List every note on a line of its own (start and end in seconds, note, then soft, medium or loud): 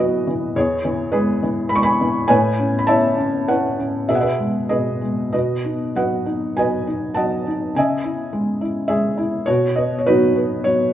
0.00 0.52 E2 soft
0.00 0.27 E3 soft
0.00 0.58 F#3 soft
0.00 0.52 F#4 soft
0.00 0.58 B4 soft
0.00 0.57 D#5 medium
0.00 0.58 E5 medium
0.00 0.58 F#5 medium
0.00 0.57 G#5 soft
0.27 0.55 E3 soft
0.56 2.25 E2 soft
0.56 1.11 G#4 soft
0.56 1.15 C#5 medium
0.85 1.41 E3 soft
1.12 1.70 G#3 soft
1.12 1.96 G#4 medium
1.12 1.72 B4 medium
1.43 2.00 E3 soft
1.69 2.28 G#3 soft
1.69 1.77 B5 medium
1.75 1.83 C#6 medium
1.83 2.26 G#5 medium
1.83 2.30 B5 medium
2.01 2.29 E3 soft
2.28 4.06 A2 medium
2.28 3.14 B4 medium
2.28 2.87 C#5 medium
2.28 2.82 G#5 medium
2.60 3.16 C#4 soft
2.79 2.87 B5 medium
2.87 3.47 E4 soft
2.87 3.47 C#5 medium
2.87 3.75 E5 medium
2.87 3.50 A5 medium
3.18 3.78 C#4 soft
3.48 4.08 E4 soft
3.48 4.05 B4 soft
3.48 4.05 C#5 soft
3.48 4.05 F#5 medium
3.79 4.09 C#4 soft
4.08 4.69 B2 soft
4.08 4.20 G#4 soft
4.08 4.21 B4 soft
4.08 4.16 E5 medium
4.15 4.23 F#5 medium
4.21 4.68 G#4 soft
4.21 4.69 B4 soft
4.21 4.71 E5 medium
4.39 5.00 G#3 soft
4.69 5.31 B2 soft
4.69 5.29 G#4 soft
4.69 5.29 B4 soft
4.69 5.29 D#5 medium
5.01 5.32 G#3 soft
5.32 7.12 B2 soft
5.32 6.23 F#4 soft
5.32 5.96 B4 soft
5.32 5.92 D#5 medium
5.65 6.25 D#4 soft
5.95 6.55 F#3 soft
5.95 6.58 B4 soft
5.95 6.57 D#5 soft
5.95 6.59 F#5 medium
6.26 6.86 D#4 soft
6.56 7.15 F#3 soft
6.56 7.43 B4 medium
6.56 7.16 D#5 soft
6.56 7.12 G#5 medium
6.87 7.45 D#4 soft
7.14 7.74 F#3 soft
7.14 7.72 D#5 soft
7.14 7.71 F#5 soft
7.14 7.76 A5 medium
7.47 7.75 D#4 soft
7.75 9.43 C#3 soft
7.75 8.86 D#5 medium
7.75 8.86 E5 soft
7.75 8.93 G#5 medium
8.04 8.60 E4 soft
8.33 8.88 G#3 soft
8.61 9.16 E4 soft
8.88 9.45 G#3 soft
8.88 9.43 G#4 soft
8.88 9.48 E5 medium
9.18 9.46 E4 soft
9.46 10.93 B2 medium
9.46 10.06 F#4 medium
9.46 9.74 C#5 medium
9.76 10.34 B3 soft
9.76 10.00 D#5 medium
9.99 10.06 C#5 soft
10.06 10.64 F#3 soft
10.06 10.92 D#4 medium
10.06 10.91 F#4 medium
10.06 10.67 B4 medium
10.36 10.93 B3 soft
10.64 10.93 F#3 soft
10.64 10.93 C#5 medium